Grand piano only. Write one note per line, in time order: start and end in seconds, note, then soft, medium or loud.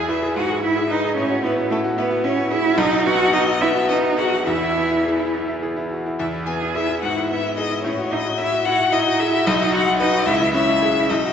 0.00 0.34 E2 medium
0.00 0.39 E4 medium
0.00 0.23 G#4 medium
0.09 0.31 B4 medium
0.23 0.36 G#4 medium
0.36 1.15 G#2 medium
0.50 0.72 G#4 medium
0.63 0.85 E4 medium
0.76 0.98 G#4 medium
0.90 1.12 B4 medium
1.04 1.17 G#4 medium
1.17 2.74 A2 medium
1.30 1.52 F#4 medium
1.44 1.65 E4 medium
1.57 1.79 F#4 medium
1.70 1.92 E4 medium
1.84 2.06 F#4 medium
1.98 2.19 E4 medium
2.11 2.32 F#4 medium
2.24 2.46 E4 medium
2.37 2.59 F#4 medium
2.51 2.65 G#4 medium
2.64 2.78 F#4 medium
2.78 4.43 B1 loud
2.91 3.14 F#4 medium
3.05 3.28 B3 loud
3.19 3.42 F#4 medium
3.33 3.56 B3 loud
3.47 3.70 F#4 loud
3.61 3.84 B3 loud
3.75 3.98 F#4 loud
3.89 4.12 B3 loud
4.04 4.27 F#4 medium
4.18 4.32 G#4 medium
4.32 4.47 F#4 medium
4.47 6.15 E2 medium
4.62 4.85 E4 medium
4.77 5.00 B3 medium
4.90 5.14 E4 medium
5.05 5.28 G#4 medium
5.20 5.42 E4 medium
5.33 5.56 B3 medium
5.48 5.71 E4 medium
5.62 5.85 G#4 medium
5.76 5.99 E4 medium
5.91 6.05 F#4 medium
6.06 6.20 E4 medium
6.20 7.00 E2 medium
6.33 6.55 E4 medium
6.47 6.69 B3 medium
6.61 6.83 E4 medium
6.75 6.97 G#4 medium
6.89 7.03 E4 medium
7.03 7.82 G#2 medium
7.17 7.39 E4 medium
7.30 7.52 B3 medium
7.44 7.66 E4 medium
7.58 7.79 G#4 medium
7.72 7.85 E4 medium
7.85 9.43 A2 medium
7.98 8.20 F#4 medium
8.12 8.33 E4 medium
8.25 8.47 F#4 medium
8.39 8.61 E4 medium
8.52 8.74 F#4 medium
8.66 8.88 E4 medium
8.80 9.01 F#4 medium
8.93 9.14 E4 loud
9.06 9.28 F#4 medium
9.20 9.33 G#4 medium
9.33 9.47 F#4 medium
9.47 10.25 B1 loud
9.60 9.81 F#4 medium
9.73 9.94 D#4 loud
9.86 10.08 F#4 medium
10.00 10.22 B4 loud
10.13 10.27 F#4 loud
10.27 11.08 C#2 loud
10.41 10.63 E4 medium
10.54 10.76 C#4 medium
10.68 10.90 E4 medium
10.82 11.05 G#4 medium
10.97 11.10 E4 medium
11.10 11.33 B1 medium
11.25 11.33 F#4 medium